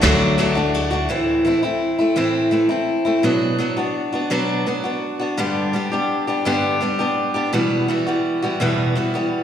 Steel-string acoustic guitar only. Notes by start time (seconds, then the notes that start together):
0.02 D3 F#3 A3 D4 F#4
0.38 F#3 A3 D4 F#4
0.55 A3 D4 F#4
0.91 A3 D4 F#4
1.09 A2 E3 A3 C4 E4
1.45 E3 A3 C4 E4
1.63 A3 C4 E4
1.99 A3 C4 E4
2.16 A2 E3 A3 C4 E4
2.51 E3 A3 C4 E4
2.69 A3 C4 E4
3.05 A3 C4 E4
3.23 B2 F#3 B3 D4 F#4
3.59 F#3 B3 D4 F#4
3.77 B3 D4 F#4
4.13 B3 D4 F#4
4.30 B2 F#3 B3 D4 F#4
4.66 F#3 B3 D4 F#4
4.84 B3 D4 F#4
5.19 B3 D4 F#4
5.37 G2 D3 G3 B3 D4 G4
5.73 G3 B3 D4 G4
5.92 G3 B3 D4 G4
6.27 G3 B3 D4 G4
6.45 G2 D3 G3 B3 D4 G4
6.81 G3 B3 D4 G4
6.99 G3 B3 D4 G4
7.34 G3 B3 D4 G4
7.53 E2 B2 E3 G3 B3 F#4
7.88 E3 G3 B3 F#4
8.07 E3 G3 B3 F#4
8.42 E3 G3 B3 F#4
8.60 E2 B2 E3 G3 B3 F#4
8.95 E3 G3 B3 F#4
9.14 E3 G3 B3 F#4